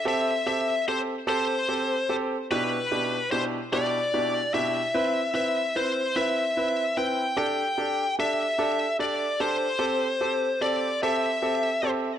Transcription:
<<
  \new Staff \with { instrumentName = "Lead electric guitar" } { \time 6/8 \key a \dorian \tempo 4. = 49 e''8 e''8 c''8 c''4 r8 | b'4 c''8 d''4 e''8~ | e''8 e''8 c''8 e''4 g''8 | g''4 e''4 d''8 c''8~ |
c''4 d''8 e''4 r8 | }
  \new Staff \with { instrumentName = "Grand piano" } { \time 6/8 \key a \dorian <c' g' a'>8 <c' g' a'>8 <c' g' a'>8 <c' g' a'>8 <c' g' a'>8 <c' g' a'>8 | <b, d' e' g'>8 <b, d' e' g'>8 <b, d' e' g'>8 <b, d' e' g'>8 <b, d' e' g'>8 <b, d' e' g'>8 | <c' e' b'>8 <c' e' b'>8 <c' e' b'>8 <c' e' b'>8 <c' e' b'>8 <c' e' b'>8 | <d' g' a'>8 <d' g' a'>8 <d' g' a'>8 <d' g' a'>8 <d' g' a'>8 <d' g' a'>8 |
<c' g' a'>8 <c' g' a'>8 <c' g' a'>8 <c' g' a'>8 <c' g' a'>8 <c' g' a'>8 | }
>>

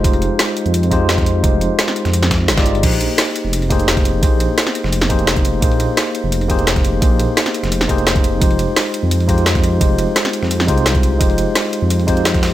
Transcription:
<<
  \new Staff \with { instrumentName = "Tine electric piano" } { \time 4/4 \key bes \dorian \tempo 4 = 172 <aes ees' f' g' c''>2~ <aes ees' f' g' c''>8 <aes ees' f' g' c''>4. | <aes ees' f' g' c''>2~ <aes ees' f' g' c''>8 r8. <aes ees' f' g' d''>8. | <bes ees' g' aes' c''>2~ <bes ees' g' aes' c''>8 <bes ees' g' aes' c''>4. | <bes ees' g' aes' c''>2~ <bes ees' g' aes' c''>8 <bes ees' g' aes' c''>4. |
<bes ees' g' aes' c''>2~ <bes ees' g' aes' c''>8 <bes ees' g' aes' c''>4. | <bes ees' g' aes' c''>2~ <bes ees' g' aes' c''>8 <bes ees' g' aes' c''>4. | <aes ees' f' g' c''>2~ <aes ees' f' g' c''>8 <aes ees' f' g' c''>4. | <aes ees' f' g' c''>2~ <aes ees' f' g' c''>8 <aes ees' f' g' c''>4. |
<aes ees' f' g' c''>2~ <aes ees' f' g' c''>8 <aes ees' f' g' c''>4. | }
  \new Staff \with { instrumentName = "Detuned saw bass" } { \clef bass \time 4/4 \key bes \dorian f,,8. r4 f,2~ f,16 | f,,8. r4 f,4~ f,16 g,,4 | bes,,8. r4 f,,2~ f,,16 | bes,,8. r4 f,,8. f,,4 f,,8 |
bes,,8. r4 f,,2~ f,,16 | bes,,8. r4 f,,8. f,,4 f,,8 | f,,8. r4 f,2~ f,16 | f,,8. r4 f,8. c,4 c,8 |
f,,8. r4 f,2~ f,16 | }
  \new DrumStaff \with { instrumentName = "Drums" } \drummode { \time 4/4 <hh bd>16 hh16 hh8 <hh hho sn>8 hh16 hh16 hh16 hh16 <hh bd>8 <hh sn>16 <hh bd sn>16 hh8 | <hh bd>8 hh8 <hh sn>16 sn16 hh16 <hh sn>16 hh16 <hh sn>16 <hh bd sn>8 <hh sn>16 <hh bd sn>16 hh16 hh16 | <cymc hh bd cymr>16 hh16 <hh cymr>8 <hh hho cymr sn>8 <hh cymr>8 <hh cymr>16 hh16 <hh bd cymr>16 hh16 <hh cymr sn>16 <hh bd sn>16 <hh cymr>8 | <hh bd cymr>8 <hh cymr>8 <hh cymr sn>16 sn16 <hh cymr>16 sn16 <hh cymr>16 sn16 <hh bd cymr>16 hh16 <hh cymr sn>16 <hh bd>16 <hh cymr>8 |
<hh bd cymr>16 hh16 <hh cymr>8 <hh hho cymr sn>8 <hh cymr>8 <hh cymr>16 hh16 <hh bd cymr>16 hh16 <hh cymr sn>16 <hh bd sn>16 <hh cymr>8 | <hh bd cymr>8 <hh cymr>8 <hh cymr sn>16 <hh sn>16 <hh cymr>16 <hh sn>16 <hh cymr>16 sn16 <hh bd cymr>16 hh16 <hh cymr sn>16 <hh bd>16 <hh cymr>8 | <hh bd cymr>16 hh16 <hh cymr>8 <hh hho cymr sn>8 <hh cymr>8 <hh cymr>16 hh16 <hh bd cymr>16 hh16 <hh cymr sn>16 <hh bd sn>16 <hh cymr>8 | <hh bd cymr>8 <hh cymr>8 <hh cymr sn>16 sn16 <hh cymr>16 sn16 <hh cymr>16 sn16 <hh bd cymr>16 hh16 <hh cymr sn>16 <hh bd>16 <hh cymr>8 |
<hh bd cymr>16 hh16 <hh cymr>8 <hh hho cymr sn>8 <hh cymr>8 <hh cymr>16 hh16 <hh bd cymr>16 hh16 <hh cymr sn>16 <hh bd sn>16 <hh hho cymr sn>8 | }
>>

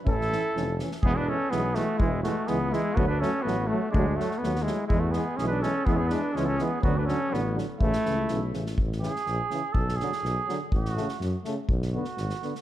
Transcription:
<<
  \new Staff \with { instrumentName = "Flugelhorn" } { \time 2/4 \key a \major \tempo 4 = 124 e'4. r8 | gis'16 b'16 a'8 gis'8 fis'8 | e'8 fis'8 gis'8 e'8 | fis'16 b'16 a'8 fis'8 fis'8 |
d'8 fis'8 fis'8 e'8 | e'16 fis'16 gis'8 gis'16 b'16 a'8 | gis'32 a'32 gis'16 b'8 gis'32 gis'32 a'16 gis'8 | fis'16 b'16 a'8 fis'8 r8 |
e'4. r8 | r8 gis'4. | a'8 gis'4. | fis'4 r4 |
r8 fis'4. | }
  \new Staff \with { instrumentName = "Trumpet" } { \time 2/4 \key a \major a'4. r8 | b16 d'16 cis'8 b8 a8 | gis8 a8 b8 gis8 | b16 d'16 cis'8 b8 a8 |
gis8 a8 b8 gis8 | gis16 a16 b8 cis'16 d'16 cis'8 | b32 cis'32 b16 d'8 cis'32 b32 cis'16 b8 | b16 d'16 cis'8 b8 r8 |
a4. r8 | r2 | r2 | r2 |
r2 | }
  \new Staff \with { instrumentName = "Trombone" } { \clef bass \time 2/4 \key a \major cis'8 cis'8 cis'8 cis'8 | gis8 gis8 gis8 gis8 | gis8 gis8 gis8 gis8 | a8 a8 a8 a8 |
a8 a8 a8 a8 | gis8 gis8 gis8 gis8 | gis8 gis8 gis8 gis8 | fis8 fis8 fis8 fis8 |
e8 e8 e8 e8 | r8 e8 r8 e8 | r8 fis8 r8 fis8 | r8 a8 r8 a8 |
r8 b8 r8 b8 | }
  \new Staff \with { instrumentName = "Euphonium" } { \clef bass \time 2/4 \key a \major e8 e8 e8 e8 | e8 e8 e8 e8 | e8 e8 e8 e8 | fis8 fis8 fis8 fis8 |
fis8 fis8 fis8 fis8 | e8 e8 e8 e8 | e8 e8 e8 e8 | d8 d8 d8 d8 |
cis8 cis8 cis8 cis8 | r8 cis8 r8 cis8 | r8 d8 r8 d8 | r8 cis8 r8 cis8 |
r8 d8 r8 d8 | }
  \new Staff \with { instrumentName = "Tuba" } { \clef bass \time 2/4 \key a \major a,,4 f,,4 | e,,4 b,,4 | e,,4 cis,4 | d,4 a,,4 |
d,4 dis,4 | e,4 b,,4 | e,4 cis,4 | d,4 a,,4 |
a,,8 cis,8 b,,8 a,,8 | a,,4 bes,,8 r8 | b,,4 b,,8 r8 | a,,4 fis,8 r8 |
b,,4 gis,,8 r8 | }
  \new DrumStaff \with { instrumentName = "Drums" } \drummode { \time 2/4 bd16 sn16 sn8 sn8 sn16 sn16 | bd4 sn8 sn8 | bd8 sn8 sn8 sn8 | bd8 sn8 sn4 |
bd8 sn16 sn16 sn16 sn16 sn8 | bd8 sn8 sn8 sn8 | bd8 sn8 sn8 sn8 | bd8 sn8 sn8 sn8 |
bd16 sn16 sn8 sn8 sn16 sn16 | bd16 sn16 sn16 sn16 sn8 sn8 | bd16 sn16 sn16 sn16 sn8 sn8 | bd16 sn16 sn16 sn16 sn8 sn8 |
bd16 sn8 sn16 sn16 sn16 sn16 sn16 | }
>>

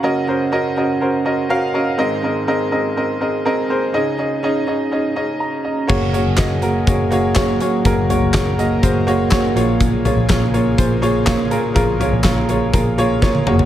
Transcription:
<<
  \new Staff \with { instrumentName = "Upright piano" } { \time 4/4 \key bes \minor \tempo 4 = 123 << { ges''8 r2. r8 | r1 | r2. bes''8 ees''8~ | ees''8 r2. r8 |
r1 | r1 | r1 | } \\ { <des' ges' bes' ees''>8 <des' ges' bes' c''>8 <des' ges' bes' ees''>8 <des' ges' bes' ees''>8 <des' ges' bes' c''>8 <des' ges' bes' ees''>8 <des' ges' bes' f''>8 <des' ges' bes' ees''>8 | <c' aes' bes' ees''>8 <c' aes' bes' ees''>8 <c' aes' bes' ees''>8 <c' aes' bes' ees''>8 <c' aes' bes' ees''>8 <c' aes' bes' ees''>8 <c' aes' bes' ees''>8 <c' aes' bes' c''>8 | <des' ees' aes' ees''>8 <des' ees' aes' ees''>8 <des' ees' aes' ees''>8 <des' ees' aes' ees''>8 <des' ees' aes' ees''>8 <des' ees' aes' ees''>8 r4 | <bes ges' aes' des''>8 <bes ges' aes' des''>8 <bes ges' aes' ees''>8 <bes ges' aes' bes'>8 <bes ges' aes' des''>8 <bes ges' aes' des''>8 <bes ges' aes' des''>8 <bes ges' aes' des''>8 |
<bes ges' aes' bes'>8 <bes ges' aes' des''>8 <bes ges' aes' des''>8 <bes ges' aes' ees''>8 <bes ges' aes' c''>8 <bes ges' aes' des''>8 <bes ges' aes' des''>8 <bes f' aes' des''>8~ | <bes f' aes' des''>8 <bes f' aes' des''>8 <bes f' aes' des''>8 <bes f' aes' des''>8 <bes f' aes' c''>8 <bes f' aes' des''>8 <bes f' aes' des''>8 <bes f' aes' bes'>8 | <bes f' aes' bes'>8 <bes f' aes' des''>8 <bes f' aes' des''>8 <bes f' aes' des''>8 <bes f' aes' bes'>8 <bes f' aes' des''>8 <bes f' aes' des''>8 <bes ges' aes' des''>8 | } >> }
  \new Staff \with { instrumentName = "Upright piano" } { \clef bass \time 4/4 \key bes \minor <ges,, ges,>1 | <aes,, aes,>1 | <des, des>1 | r1 |
r2. r8 bes,8~ | bes,4 r2 r8 bes,8~ | bes,4 r2. | }
  \new Staff \with { instrumentName = "Analog synth pad" } { \time 4/4 \key bes \minor << { r1 | r1 | r1 | aes'1 |
bes'2.~ bes'8 aes'8~ | aes'1~ | aes'2.~ aes'8 ges'8 | } \\ { r1 | r1 | r1 | <ges bes>1~ |
<ges bes>2.~ <ges bes>8 <des bes>8~ | <des bes>1~ | <des bes>2.~ <des bes>8 <bes, aes>8 | } >> }
  \new Staff \with { instrumentName = "Picked electric bass" } { \clef bass \time 4/4 \key bes \minor r1 | r1 | r1 | ges,,8. ges,,16 r4 ges,,4. r8 |
ges,,8. ges,,16 ges,,4 ges,,4. bes,,8~ | bes,,8. bes,,16 bes,,4 bes,,4. r8 | bes,,8. bes,,16 bes,,4 bes,,4. ges,,8 | }
  \new DrumStaff \with { instrumentName = "Drums" } \drummode { \time 4/4 r4 r4 r4 r4 | r4 r4 r4 r4 | r4 r4 r4 r4 | <cymc bd>8 hh8 <hc hh bd sn>8 hh8 <hh bd>8 hh8 <hc hh bd sn>8 hh8 |
<hh bd>8 <hh tomfh>8 <hc hh bd sn>8 hh8 <hh bd>8 hh8 <hc hh bd sn>8 hh8 | <hh bd>8 <hh tomfh>8 <hc hh bd sn>8 hh8 <hh bd>8 hh8 <hc hh bd sn>8 hh8 | <hh bd>8 <hh tomfh>8 <hc hh bd sn>8 hh8 <hh bd>8 hh8 <bd sn>16 tommh16 toml16 tomfh16 | }
>>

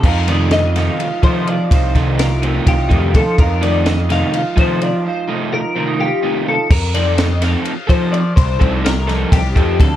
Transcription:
<<
  \new Staff \with { instrumentName = "Clean electric guitar" } { \time 7/8 \key c \dorian \tempo 4 = 126 bes'8 d''8 ees''8 f''4 c''8 d''8 | c''4 bes'4 g'4 a'8 | bes'8 d''8 ees''8 f''4 c''8 d''8 | c''4 bes'4 g'4 a'8 |
bes'8 d''8 ees''8 f''4 c''8 d''8 | c''4 bes'4 g'4 a'8 | }
  \new Staff \with { instrumentName = "Clean electric guitar" } { \time 7/8 \key c \dorian << { <ees' f'>8 ees'8 d'16 f'16 ees'8 f'8 ees'8 f'8 | <ees' f'>8 ees'8 f'8 c'16 ees'16 f'8 ees'8 f'8 | <ees' f'>8 ees'8 d'16 f'16 ees'8 f'8 ees'8 f'8 | <ees' f'>8 ees'8 f'8 c'16 ees'16 f'8 ees'8 f'8 |
r2. r8 | r2. r8 | } \\ { f2~ f8 c4 | f2~ f8 c4 | f2~ f8 c4 | f2~ f8 c4 |
r2. r8 | r2. r8 | } >> }
  \new Staff \with { instrumentName = "Overdriven electric guitar" } { \time 7/8 \key c \dorian r8 <c ees a ees'>8 r8 <c ees a ees'>8 r8 <c ees a ees'>8 r8 | r8 <c ees a ees'>8 r8 <c ees a ees'>8 r8 <c ees a ees'>8 r8 | r8 <c ees a ees'>8 r8 <c ees a ees'>8 r8 <c ees a ees'>8 r8 | r8 <c ees a ees'>8 r8 <c ees a ees'>8 r8 <c ees a ees'>8 r8 |
r8 <f c' ees' a'>8 r8 <f c' ees' a'>8 r8 <f c' ees' a'>8 r8 | r8 <f c' ees' a'>8 r8 <f c' ees' a'>8 r8 <f c' ees' a'>8 r8 | }
  \new Staff \with { instrumentName = "Picked electric bass" } { \clef bass \time 7/8 \key c \dorian f,2 r8 f4 | c,8 c,4. c,8 f,8 f8 | f,2 r8 f4 | r2. r8 |
f,2 r8 f4 | c,8 c,4. c,8 f,8 d,8 | }
  \new DrumStaff \with { instrumentName = "Drums" } \drummode { \time 7/8 <cymc bd>8 cymr8 <cymr sn>8 <cymr sn>8 cymr8 <bd cymr>8 cymr8 | <bd cymr>8 <bd cymr sn>8 <cymr sn>8 cymr8 <bd cymr>8 <bd cymr>8 <bd cymr>8 | <bd cymr>8 cymr8 <cymr sn>8 <cymr sn>8 cymr8 <bd cymr>8 cymr8 | r4 r4 r4. |
<cymc bd>8 cymr8 <cymr sn>8 <cymr sn>8 cymr8 <bd cymr>8 cymr8 | <bd cymr>8 <bd cymr>8 <cymr sn>8 <cymr sn>8 <bd cymr>8 <bd cymr>8 <bd cymr>8 | }
>>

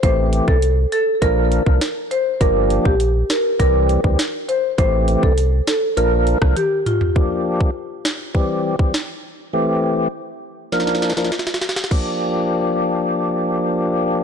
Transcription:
<<
  \new Staff \with { instrumentName = "Marimba" } { \time 4/4 \key g \dorian \tempo 4 = 101 c''16 r8 a'16 r8 a'16 r16 bes'8. r8. c''16 r16 | bes'16 r8 g'16 r8 bes'16 r16 bes'8. r8. c''16 r16 | c''16 r8 a'16 r8 a'16 r16 bes'8. r16 g'16 r16 f'16 r16 | r1 |
r1 | r1 | }
  \new Staff \with { instrumentName = "Tonewheel organ" } { \time 4/4 \key g \dorian <e a c' g'>4 r4 <f bes d' bes'>8. <f bes d' bes'>16 r4 | <f bes d' g'>4 r4 <e g c' g'>8. <e g c' g'>16 r4 | <e a c' g'>4 r4 <f bes d' bes'>8. <f bes d' bes'>16 r4 | <f bes d' g'>4 r4 <e g c' g'>8. <e g c' g'>16 r4 |
<e a c' g'>4 r4 <f bes d' bes'>8. <f bes d' bes'>16 r4 | <f bes d' g'>1 | }
  \new Staff \with { instrumentName = "Sub bass" } { \clef bass \time 4/4 \key g \dorian a,,8. c,8. r8 bes,,8. c,16 r4 | g,,8. bes,,8. r8 c,8. d,16 r4 | a,,8. c,8. r8 bes,,8. c,16 r4 | r1 |
r1 | r1 | }
  \new DrumStaff \with { instrumentName = "Drums" } \drummode { \time 4/4 <hh bd>8 hh16 bd16 hh8 hh8 <hh bd>8 hh16 bd16 <hh sn>8 hh8 | <hh bd>8 hh16 bd16 hh8 <hh sn>8 <hh bd>8 hh16 bd16 <hh sn>8 hh8 | <hh bd>8 hh16 bd16 hh8 <hh sn>8 hh8 hh16 <bd ss>16 <hh tommh>8 <hh toml>16 tomfh16 | bd8. bd16 r8 sn8 bd8. bd16 sn4 |
r4 r4 sn32 sn32 sn32 sn32 sn32 sn32 sn32 sn32 sn32 sn32 sn32 sn32 sn32 sn32 sn32 sn32 | <cymc bd>4 r4 r4 r4 | }
>>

